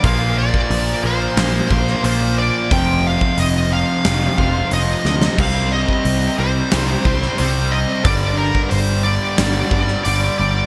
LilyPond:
<<
  \new Staff \with { instrumentName = "Lead electric guitar" } { \time 4/4 \key bes \mixolydian \tempo 4 = 90 f''8 d''4 c''4. c''8 d''8 | g''8 f''8 ees''8 f''4. ees''8 ees''8 | f''8 ees''4 c''4. c''8 ees''8 | d''8 bes'8 c''8 d''4. d''8 d''8 | }
  \new Staff \with { instrumentName = "Distorted electric guitar" } { \clef bass \time 4/4 \key bes \mixolydian <bes, f bes>4. <bes, f bes>4. <bes, f bes>4 | <f, c f>4. <f, c f>4. <f, c f>4 | <c g c'>4. <c g c'>4. <c g c'>4 | <g, d g>4. <g, d g>4. <g, d g>4 | }
  \new Staff \with { instrumentName = "Distorted electric guitar" } { \clef bass \time 4/4 \key bes \mixolydian <bes, f bes>2 <bes, f bes>2 | <f, c f>2 <f, c f>2 | <c g c'>2 <c g c'>2 | <g, d g>2 <g, d g>2 | }
  \new Staff \with { instrumentName = "Overdriven electric guitar" } { \clef bass \time 4/4 \key bes \mixolydian <bes, f bes>2~ <bes, f bes>8 <bes, f bes>8 <bes, f bes>4 | <f, c f>2~ <f, c f>8 <f, c f>8 <f, c f>4 | <c g c'>2~ <c g c'>8 <c g c'>8 <c g c'>4 | <g, d g>2~ <g, d g>8 <g, d g>8 <g, d g>4 | }
  \new Staff \with { instrumentName = "Picked electric bass" } { \clef bass \time 4/4 \key bes \mixolydian bes,,4 bes,,8 bes,,8 bes,,8 bes,,8 bes,,4 | f,,4 f,,4 f,,8 f,,8 f,,8 d,8 | c,4 c,8 c,8 c,8 c,8 c,4 | g,,4 g,,4 g,,8 g,,8 g,,8 g,,8 | }
  \new DrumStaff \with { instrumentName = "Drums" } \drummode { \time 4/4 <hho bd>8. bd16 hho4 <hho sn>8 bd16 sn16 hho4 | <hho bd>8. bd16 hho4 <hho sn>8 bd8 hho8 sn16 sn16 | <cymc bd>8. bd16 hho4 <hho sn>8 bd16 sn16 hho4 | <hho bd>8. bd16 hho4 <hho sn>8 bd16 sn16 hho4 | }
>>